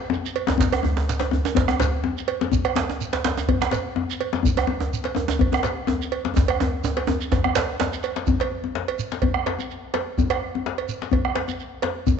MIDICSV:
0, 0, Header, 1, 5, 480
1, 0, Start_track
1, 0, Tempo, 480769
1, 594, Time_signature, 4, 2, 24, 8
1, 6350, Tempo, 475436
1, 12240, End_track
2, 0, Start_track
2, 0, Title_t, "Bombo"
2, 594, Note_on_c, 9, 43, 84
2, 694, Note_off_c, 9, 43, 0
2, 732, Note_on_c, 9, 37, 70
2, 832, Note_off_c, 9, 37, 0
2, 1563, Note_on_c, 9, 43, 84
2, 1663, Note_off_c, 9, 43, 0
2, 1679, Note_on_c, 9, 37, 76
2, 1778, Note_off_c, 9, 37, 0
2, 2523, Note_on_c, 9, 43, 77
2, 2622, Note_off_c, 9, 43, 0
2, 2644, Note_on_c, 9, 37, 64
2, 2744, Note_off_c, 9, 37, 0
2, 3476, Note_on_c, 9, 43, 93
2, 3576, Note_off_c, 9, 43, 0
2, 3611, Note_on_c, 9, 37, 76
2, 3711, Note_off_c, 9, 37, 0
2, 4441, Note_on_c, 9, 43, 91
2, 4541, Note_off_c, 9, 43, 0
2, 4579, Note_on_c, 9, 37, 74
2, 4679, Note_off_c, 9, 37, 0
2, 5399, Note_on_c, 9, 43, 96
2, 5499, Note_off_c, 9, 43, 0
2, 5534, Note_on_c, 9, 37, 89
2, 5634, Note_off_c, 9, 37, 0
2, 6355, Note_on_c, 9, 43, 92
2, 6456, Note_off_c, 9, 43, 0
2, 6494, Note_on_c, 9, 37, 64
2, 6595, Note_off_c, 9, 37, 0
2, 6974, Note_on_c, 9, 37, 29
2, 7075, Note_off_c, 9, 37, 0
2, 7317, Note_on_c, 9, 37, 31
2, 7317, Note_on_c, 9, 43, 88
2, 7418, Note_off_c, 9, 37, 0
2, 7418, Note_off_c, 9, 43, 0
2, 7443, Note_on_c, 9, 37, 79
2, 7544, Note_off_c, 9, 37, 0
2, 7689, Note_on_c, 9, 37, 28
2, 7790, Note_off_c, 9, 37, 0
2, 8039, Note_on_c, 9, 37, 29
2, 8140, Note_off_c, 9, 37, 0
2, 8275, Note_on_c, 9, 43, 97
2, 8376, Note_off_c, 9, 43, 0
2, 9235, Note_on_c, 9, 43, 90
2, 9336, Note_off_c, 9, 43, 0
2, 9361, Note_on_c, 9, 37, 74
2, 9462, Note_off_c, 9, 37, 0
2, 10203, Note_on_c, 9, 43, 97
2, 10304, Note_off_c, 9, 43, 0
2, 10333, Note_on_c, 9, 37, 75
2, 10434, Note_off_c, 9, 37, 0
2, 11158, Note_on_c, 9, 43, 95
2, 11259, Note_off_c, 9, 43, 0
2, 11286, Note_on_c, 9, 37, 73
2, 11387, Note_off_c, 9, 37, 0
2, 12111, Note_on_c, 9, 43, 96
2, 12212, Note_off_c, 9, 43, 0
2, 12240, End_track
3, 0, Start_track
3, 0, Title_t, "Djembe"
3, 98, Note_on_c, 9, 62, 29
3, 98, Note_on_c, 9, 63, 84
3, 198, Note_off_c, 9, 62, 0
3, 198, Note_off_c, 9, 63, 0
3, 239, Note_on_c, 9, 62, 24
3, 338, Note_off_c, 9, 62, 0
3, 347, Note_on_c, 9, 62, 28
3, 446, Note_off_c, 9, 62, 0
3, 470, Note_on_c, 9, 62, 65
3, 470, Note_on_c, 9, 63, 67
3, 484, Note_off_c, 9, 63, 0
3, 484, Note_on_c, 9, 63, 100
3, 570, Note_off_c, 9, 62, 0
3, 577, Note_on_c, 9, 64, 84
3, 584, Note_off_c, 9, 63, 0
3, 604, Note_on_c, 9, 62, 79
3, 677, Note_off_c, 9, 64, 0
3, 704, Note_off_c, 9, 62, 0
3, 731, Note_on_c, 9, 63, 74
3, 828, Note_off_c, 9, 63, 0
3, 828, Note_on_c, 9, 62, 23
3, 828, Note_on_c, 9, 63, 72
3, 842, Note_on_c, 9, 64, 84
3, 928, Note_off_c, 9, 62, 0
3, 928, Note_off_c, 9, 63, 0
3, 942, Note_off_c, 9, 64, 0
3, 967, Note_on_c, 9, 63, 112
3, 1066, Note_off_c, 9, 63, 0
3, 1091, Note_on_c, 9, 62, 74
3, 1191, Note_off_c, 9, 62, 0
3, 1192, Note_on_c, 9, 62, 65
3, 1206, Note_on_c, 9, 63, 76
3, 1292, Note_off_c, 9, 62, 0
3, 1306, Note_off_c, 9, 63, 0
3, 1311, Note_on_c, 9, 62, 21
3, 1311, Note_on_c, 9, 63, 72
3, 1330, Note_on_c, 9, 64, 70
3, 1410, Note_off_c, 9, 62, 0
3, 1410, Note_off_c, 9, 63, 0
3, 1430, Note_off_c, 9, 64, 0
3, 1449, Note_on_c, 9, 63, 98
3, 1548, Note_on_c, 9, 64, 74
3, 1549, Note_off_c, 9, 63, 0
3, 1565, Note_on_c, 9, 62, 82
3, 1648, Note_off_c, 9, 64, 0
3, 1665, Note_off_c, 9, 62, 0
3, 1678, Note_on_c, 9, 63, 62
3, 1685, Note_off_c, 9, 63, 0
3, 1685, Note_on_c, 9, 63, 83
3, 1784, Note_off_c, 9, 63, 0
3, 1793, Note_on_c, 9, 62, 67
3, 1795, Note_on_c, 9, 64, 82
3, 1893, Note_off_c, 9, 62, 0
3, 1895, Note_off_c, 9, 64, 0
3, 2033, Note_on_c, 9, 63, 77
3, 2133, Note_off_c, 9, 63, 0
3, 2272, Note_on_c, 9, 62, 25
3, 2371, Note_off_c, 9, 62, 0
3, 2409, Note_on_c, 9, 62, 62
3, 2409, Note_on_c, 9, 63, 63
3, 2509, Note_off_c, 9, 62, 0
3, 2509, Note_off_c, 9, 63, 0
3, 2512, Note_on_c, 9, 64, 69
3, 2612, Note_off_c, 9, 64, 0
3, 2752, Note_on_c, 9, 62, 21
3, 2752, Note_on_c, 9, 63, 76
3, 2759, Note_off_c, 9, 62, 0
3, 2759, Note_on_c, 9, 62, 108
3, 2851, Note_off_c, 9, 63, 0
3, 2859, Note_off_c, 9, 62, 0
3, 2891, Note_on_c, 9, 63, 79
3, 2991, Note_off_c, 9, 63, 0
3, 3123, Note_on_c, 9, 62, 59
3, 3126, Note_off_c, 9, 62, 0
3, 3126, Note_on_c, 9, 62, 75
3, 3226, Note_off_c, 9, 62, 0
3, 3240, Note_on_c, 9, 62, 97
3, 3242, Note_off_c, 9, 62, 0
3, 3242, Note_on_c, 9, 62, 22
3, 3242, Note_on_c, 9, 63, 67
3, 3342, Note_off_c, 9, 62, 0
3, 3342, Note_off_c, 9, 63, 0
3, 3369, Note_on_c, 9, 63, 81
3, 3469, Note_off_c, 9, 63, 0
3, 3481, Note_on_c, 9, 64, 74
3, 3581, Note_off_c, 9, 64, 0
3, 3602, Note_on_c, 9, 63, 52
3, 3613, Note_on_c, 9, 62, 78
3, 3702, Note_off_c, 9, 63, 0
3, 3708, Note_off_c, 9, 62, 0
3, 3708, Note_on_c, 9, 62, 67
3, 3808, Note_off_c, 9, 62, 0
3, 3953, Note_on_c, 9, 63, 80
3, 4053, Note_off_c, 9, 63, 0
3, 4194, Note_on_c, 9, 62, 25
3, 4294, Note_off_c, 9, 62, 0
3, 4321, Note_on_c, 9, 62, 62
3, 4321, Note_on_c, 9, 63, 66
3, 4421, Note_off_c, 9, 62, 0
3, 4421, Note_off_c, 9, 63, 0
3, 4422, Note_on_c, 9, 64, 68
3, 4522, Note_off_c, 9, 64, 0
3, 4564, Note_on_c, 9, 63, 90
3, 4664, Note_off_c, 9, 63, 0
3, 4666, Note_on_c, 9, 62, 22
3, 4666, Note_on_c, 9, 63, 77
3, 4766, Note_off_c, 9, 62, 0
3, 4766, Note_off_c, 9, 63, 0
3, 4797, Note_on_c, 9, 63, 77
3, 4897, Note_off_c, 9, 63, 0
3, 5031, Note_on_c, 9, 62, 57
3, 5131, Note_off_c, 9, 62, 0
3, 5139, Note_on_c, 9, 62, 20
3, 5139, Note_on_c, 9, 63, 65
3, 5153, Note_off_c, 9, 63, 0
3, 5153, Note_on_c, 9, 63, 77
3, 5239, Note_off_c, 9, 62, 0
3, 5253, Note_off_c, 9, 63, 0
3, 5274, Note_on_c, 9, 63, 105
3, 5374, Note_off_c, 9, 63, 0
3, 5384, Note_on_c, 9, 64, 71
3, 5484, Note_off_c, 9, 64, 0
3, 5513, Note_on_c, 9, 63, 60
3, 5518, Note_off_c, 9, 63, 0
3, 5518, Note_on_c, 9, 63, 80
3, 5618, Note_off_c, 9, 63, 0
3, 5621, Note_on_c, 9, 62, 67
3, 5721, Note_off_c, 9, 62, 0
3, 5863, Note_on_c, 9, 63, 80
3, 5872, Note_off_c, 9, 63, 0
3, 5872, Note_on_c, 9, 63, 81
3, 5972, Note_off_c, 9, 63, 0
3, 6108, Note_on_c, 9, 62, 21
3, 6208, Note_off_c, 9, 62, 0
3, 6239, Note_on_c, 9, 62, 59
3, 6239, Note_on_c, 9, 63, 58
3, 6339, Note_off_c, 9, 62, 0
3, 6339, Note_off_c, 9, 63, 0
3, 6352, Note_on_c, 9, 62, 21
3, 6352, Note_on_c, 9, 64, 75
3, 6357, Note_on_c, 9, 63, 104
3, 6453, Note_off_c, 9, 62, 0
3, 6453, Note_off_c, 9, 64, 0
3, 6458, Note_off_c, 9, 63, 0
3, 6595, Note_on_c, 9, 63, 106
3, 6602, Note_off_c, 9, 63, 0
3, 6602, Note_on_c, 9, 63, 75
3, 6703, Note_off_c, 9, 63, 0
3, 6840, Note_on_c, 9, 63, 100
3, 6843, Note_on_c, 9, 62, 20
3, 6941, Note_off_c, 9, 63, 0
3, 6944, Note_off_c, 9, 62, 0
3, 6963, Note_on_c, 9, 62, 59
3, 7064, Note_off_c, 9, 62, 0
3, 7070, Note_on_c, 9, 63, 99
3, 7079, Note_off_c, 9, 63, 0
3, 7079, Note_on_c, 9, 63, 62
3, 7180, Note_off_c, 9, 63, 0
3, 7315, Note_on_c, 9, 63, 88
3, 7322, Note_on_c, 9, 62, 23
3, 7322, Note_on_c, 9, 64, 72
3, 7416, Note_off_c, 9, 63, 0
3, 7423, Note_off_c, 9, 62, 0
3, 7423, Note_off_c, 9, 64, 0
3, 7449, Note_on_c, 9, 63, 60
3, 7550, Note_off_c, 9, 63, 0
3, 7554, Note_on_c, 9, 62, 113
3, 7565, Note_off_c, 9, 62, 0
3, 7565, Note_on_c, 9, 62, 70
3, 7666, Note_off_c, 9, 62, 0
3, 7800, Note_on_c, 9, 62, 101
3, 7809, Note_off_c, 9, 62, 0
3, 7809, Note_on_c, 9, 62, 24
3, 7809, Note_on_c, 9, 63, 84
3, 7910, Note_off_c, 9, 62, 0
3, 7910, Note_off_c, 9, 63, 0
3, 8169, Note_on_c, 9, 62, 63
3, 8270, Note_off_c, 9, 62, 0
3, 8288, Note_on_c, 9, 64, 72
3, 8389, Note_off_c, 9, 64, 0
3, 8409, Note_on_c, 9, 62, 56
3, 8510, Note_off_c, 9, 62, 0
3, 8530, Note_on_c, 9, 62, 23
3, 8631, Note_off_c, 9, 62, 0
3, 8649, Note_on_c, 9, 63, 57
3, 8750, Note_off_c, 9, 63, 0
3, 8766, Note_on_c, 9, 62, 65
3, 8867, Note_off_c, 9, 62, 0
3, 9135, Note_on_c, 9, 62, 63
3, 9236, Note_off_c, 9, 62, 0
3, 9247, Note_on_c, 9, 64, 63
3, 9348, Note_off_c, 9, 64, 0
3, 9486, Note_on_c, 9, 62, 68
3, 9587, Note_off_c, 9, 62, 0
3, 9607, Note_on_c, 9, 63, 44
3, 9708, Note_off_c, 9, 63, 0
3, 9963, Note_on_c, 9, 62, 62
3, 10064, Note_off_c, 9, 62, 0
3, 10211, Note_on_c, 9, 64, 70
3, 10312, Note_off_c, 9, 64, 0
3, 10336, Note_on_c, 9, 62, 51
3, 10437, Note_off_c, 9, 62, 0
3, 10458, Note_on_c, 9, 62, 19
3, 10559, Note_off_c, 9, 62, 0
3, 10581, Note_on_c, 9, 63, 58
3, 10682, Note_off_c, 9, 63, 0
3, 10693, Note_on_c, 9, 62, 65
3, 10794, Note_off_c, 9, 62, 0
3, 11053, Note_on_c, 9, 62, 57
3, 11150, Note_on_c, 9, 64, 69
3, 11154, Note_off_c, 9, 62, 0
3, 11251, Note_off_c, 9, 64, 0
3, 11393, Note_on_c, 9, 62, 65
3, 11494, Note_off_c, 9, 62, 0
3, 11518, Note_on_c, 9, 63, 49
3, 11619, Note_off_c, 9, 63, 0
3, 11872, Note_on_c, 9, 62, 69
3, 11972, Note_off_c, 9, 62, 0
3, 12111, Note_on_c, 9, 64, 60
3, 12212, Note_off_c, 9, 64, 0
3, 12240, End_track
4, 0, Start_track
4, 0, Title_t, "Shekere"
4, 133, Note_on_c, 9, 82, 19
4, 233, Note_off_c, 9, 82, 0
4, 258, Note_on_c, 9, 82, 48
4, 358, Note_off_c, 9, 82, 0
4, 500, Note_on_c, 9, 82, 17
4, 600, Note_off_c, 9, 82, 0
4, 609, Note_on_c, 9, 82, 65
4, 709, Note_off_c, 9, 82, 0
4, 1094, Note_on_c, 9, 82, 58
4, 1194, Note_off_c, 9, 82, 0
4, 1456, Note_on_c, 9, 82, 43
4, 1556, Note_off_c, 9, 82, 0
4, 1812, Note_on_c, 9, 82, 57
4, 1912, Note_off_c, 9, 82, 0
4, 2174, Note_on_c, 9, 82, 48
4, 2273, Note_off_c, 9, 82, 0
4, 2418, Note_on_c, 9, 82, 15
4, 2518, Note_off_c, 9, 82, 0
4, 2524, Note_on_c, 9, 82, 58
4, 2624, Note_off_c, 9, 82, 0
4, 3005, Note_on_c, 9, 82, 54
4, 3104, Note_off_c, 9, 82, 0
4, 3375, Note_on_c, 9, 82, 43
4, 3475, Note_off_c, 9, 82, 0
4, 3726, Note_on_c, 9, 82, 58
4, 3826, Note_off_c, 9, 82, 0
4, 4097, Note_on_c, 9, 82, 50
4, 4197, Note_off_c, 9, 82, 0
4, 4339, Note_on_c, 9, 82, 17
4, 4438, Note_off_c, 9, 82, 0
4, 4450, Note_on_c, 9, 82, 66
4, 4550, Note_off_c, 9, 82, 0
4, 4926, Note_on_c, 9, 82, 61
4, 5025, Note_off_c, 9, 82, 0
4, 5294, Note_on_c, 9, 82, 44
4, 5394, Note_off_c, 9, 82, 0
4, 5636, Note_on_c, 9, 82, 60
4, 5736, Note_off_c, 9, 82, 0
4, 6007, Note_on_c, 9, 82, 45
4, 6107, Note_off_c, 9, 82, 0
4, 6241, Note_on_c, 9, 82, 13
4, 6340, Note_off_c, 9, 82, 0
4, 6353, Note_on_c, 9, 82, 51
4, 6454, Note_off_c, 9, 82, 0
4, 6832, Note_on_c, 9, 82, 55
4, 6933, Note_off_c, 9, 82, 0
4, 7207, Note_on_c, 9, 82, 43
4, 7308, Note_off_c, 9, 82, 0
4, 7318, Note_on_c, 9, 82, 18
4, 7419, Note_off_c, 9, 82, 0
4, 7556, Note_on_c, 9, 82, 59
4, 7657, Note_off_c, 9, 82, 0
4, 7808, Note_on_c, 9, 82, 19
4, 7909, Note_off_c, 9, 82, 0
4, 7935, Note_on_c, 9, 82, 45
4, 8036, Note_off_c, 9, 82, 0
4, 8036, Note_on_c, 9, 82, 22
4, 8137, Note_off_c, 9, 82, 0
4, 8168, Note_on_c, 9, 82, 18
4, 8269, Note_off_c, 9, 82, 0
4, 8273, Note_on_c, 9, 82, 52
4, 8374, Note_off_c, 9, 82, 0
4, 9005, Note_on_c, 9, 82, 53
4, 9106, Note_off_c, 9, 82, 0
4, 9133, Note_on_c, 9, 82, 18
4, 9234, Note_off_c, 9, 82, 0
4, 9618, Note_on_c, 9, 82, 36
4, 9719, Note_off_c, 9, 82, 0
4, 9728, Note_on_c, 9, 82, 18
4, 9829, Note_off_c, 9, 82, 0
4, 10210, Note_on_c, 9, 82, 55
4, 10311, Note_off_c, 9, 82, 0
4, 10920, Note_on_c, 9, 82, 50
4, 11021, Note_off_c, 9, 82, 0
4, 11052, Note_on_c, 9, 82, 18
4, 11153, Note_off_c, 9, 82, 0
4, 11526, Note_on_c, 9, 82, 39
4, 11627, Note_off_c, 9, 82, 0
4, 11636, Note_on_c, 9, 82, 18
4, 11737, Note_off_c, 9, 82, 0
4, 12113, Note_on_c, 9, 82, 52
4, 12214, Note_off_c, 9, 82, 0
4, 12240, End_track
5, 0, Start_track
5, 0, Title_t, "Drums"
5, 357, Note_on_c, 9, 56, 54
5, 456, Note_off_c, 9, 56, 0
5, 724, Note_on_c, 9, 56, 61
5, 824, Note_off_c, 9, 56, 0
5, 1200, Note_on_c, 9, 56, 50
5, 1300, Note_off_c, 9, 56, 0
5, 1560, Note_on_c, 9, 56, 49
5, 1660, Note_off_c, 9, 56, 0
5, 1798, Note_on_c, 9, 56, 54
5, 1898, Note_off_c, 9, 56, 0
5, 2275, Note_on_c, 9, 56, 64
5, 2375, Note_off_c, 9, 56, 0
5, 2646, Note_on_c, 9, 56, 59
5, 2746, Note_off_c, 9, 56, 0
5, 3125, Note_on_c, 9, 56, 54
5, 3225, Note_off_c, 9, 56, 0
5, 3481, Note_on_c, 9, 56, 51
5, 3581, Note_off_c, 9, 56, 0
5, 3719, Note_on_c, 9, 56, 58
5, 3819, Note_off_c, 9, 56, 0
5, 4199, Note_on_c, 9, 56, 53
5, 4299, Note_off_c, 9, 56, 0
5, 4567, Note_on_c, 9, 56, 60
5, 4666, Note_off_c, 9, 56, 0
5, 5044, Note_on_c, 9, 56, 46
5, 5143, Note_off_c, 9, 56, 0
5, 5403, Note_on_c, 9, 56, 44
5, 5502, Note_off_c, 9, 56, 0
5, 5635, Note_on_c, 9, 56, 53
5, 5735, Note_off_c, 9, 56, 0
5, 6110, Note_on_c, 9, 56, 54
5, 6209, Note_off_c, 9, 56, 0
5, 6474, Note_on_c, 9, 56, 65
5, 6575, Note_off_c, 9, 56, 0
5, 6964, Note_on_c, 9, 56, 53
5, 7065, Note_off_c, 9, 56, 0
5, 7322, Note_on_c, 9, 56, 46
5, 7423, Note_off_c, 9, 56, 0
5, 7556, Note_on_c, 9, 56, 57
5, 7657, Note_off_c, 9, 56, 0
5, 8045, Note_on_c, 9, 56, 56
5, 8145, Note_off_c, 9, 56, 0
5, 8419, Note_on_c, 9, 56, 56
5, 8520, Note_off_c, 9, 56, 0
5, 8897, Note_on_c, 9, 56, 55
5, 8998, Note_off_c, 9, 56, 0
5, 9235, Note_on_c, 9, 56, 50
5, 9336, Note_off_c, 9, 56, 0
5, 9482, Note_on_c, 9, 56, 50
5, 9583, Note_off_c, 9, 56, 0
5, 9962, Note_on_c, 9, 56, 57
5, 10063, Note_off_c, 9, 56, 0
5, 10329, Note_on_c, 9, 56, 66
5, 10430, Note_off_c, 9, 56, 0
5, 10814, Note_on_c, 9, 56, 55
5, 10915, Note_off_c, 9, 56, 0
5, 11164, Note_on_c, 9, 56, 44
5, 11265, Note_off_c, 9, 56, 0
5, 11392, Note_on_c, 9, 56, 50
5, 11493, Note_off_c, 9, 56, 0
5, 11866, Note_on_c, 9, 56, 49
5, 11967, Note_off_c, 9, 56, 0
5, 12240, End_track
0, 0, End_of_file